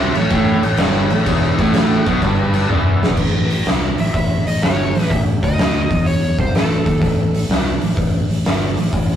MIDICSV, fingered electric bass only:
0, 0, Header, 1, 2, 480
1, 0, Start_track
1, 0, Tempo, 478851
1, 1265, Time_signature, 4, 2, 24, 8
1, 9184, End_track
2, 0, Start_track
2, 0, Title_t, "Fingered electric bass"
2, 0, Program_c, 0, 33
2, 0, Note_on_c, 0, 36, 107
2, 130, Note_off_c, 0, 36, 0
2, 156, Note_on_c, 0, 33, 81
2, 298, Note_off_c, 0, 33, 0
2, 311, Note_on_c, 0, 33, 106
2, 611, Note_off_c, 0, 33, 0
2, 633, Note_on_c, 0, 33, 94
2, 776, Note_off_c, 0, 33, 0
2, 785, Note_on_c, 0, 31, 99
2, 1087, Note_off_c, 0, 31, 0
2, 1104, Note_on_c, 0, 33, 85
2, 1250, Note_off_c, 0, 33, 0
2, 1269, Note_on_c, 0, 28, 102
2, 1570, Note_off_c, 0, 28, 0
2, 1593, Note_on_c, 0, 33, 96
2, 2038, Note_off_c, 0, 33, 0
2, 2072, Note_on_c, 0, 35, 93
2, 2215, Note_off_c, 0, 35, 0
2, 2230, Note_on_c, 0, 31, 97
2, 2674, Note_off_c, 0, 31, 0
2, 2710, Note_on_c, 0, 28, 90
2, 3154, Note_off_c, 0, 28, 0
2, 3183, Note_on_c, 0, 33, 89
2, 3630, Note_off_c, 0, 33, 0
2, 3670, Note_on_c, 0, 36, 93
2, 3971, Note_off_c, 0, 36, 0
2, 4001, Note_on_c, 0, 33, 75
2, 4141, Note_off_c, 0, 33, 0
2, 4151, Note_on_c, 0, 33, 87
2, 4452, Note_off_c, 0, 33, 0
2, 4477, Note_on_c, 0, 33, 75
2, 4619, Note_off_c, 0, 33, 0
2, 4633, Note_on_c, 0, 31, 89
2, 4933, Note_off_c, 0, 31, 0
2, 4962, Note_on_c, 0, 33, 77
2, 5102, Note_off_c, 0, 33, 0
2, 5121, Note_on_c, 0, 33, 103
2, 5418, Note_off_c, 0, 33, 0
2, 5446, Note_on_c, 0, 38, 89
2, 5887, Note_off_c, 0, 38, 0
2, 5923, Note_on_c, 0, 40, 87
2, 6365, Note_off_c, 0, 40, 0
2, 6401, Note_on_c, 0, 36, 94
2, 6541, Note_off_c, 0, 36, 0
2, 6553, Note_on_c, 0, 33, 70
2, 6854, Note_off_c, 0, 33, 0
2, 6883, Note_on_c, 0, 39, 94
2, 7023, Note_off_c, 0, 39, 0
2, 7038, Note_on_c, 0, 33, 102
2, 7479, Note_off_c, 0, 33, 0
2, 7507, Note_on_c, 0, 36, 86
2, 7810, Note_off_c, 0, 36, 0
2, 7840, Note_on_c, 0, 33, 74
2, 7981, Note_off_c, 0, 33, 0
2, 7992, Note_on_c, 0, 33, 90
2, 8292, Note_off_c, 0, 33, 0
2, 8313, Note_on_c, 0, 33, 75
2, 8456, Note_off_c, 0, 33, 0
2, 8473, Note_on_c, 0, 31, 88
2, 8772, Note_off_c, 0, 31, 0
2, 8797, Note_on_c, 0, 33, 78
2, 8938, Note_off_c, 0, 33, 0
2, 8951, Note_on_c, 0, 33, 99
2, 9184, Note_off_c, 0, 33, 0
2, 9184, End_track
0, 0, End_of_file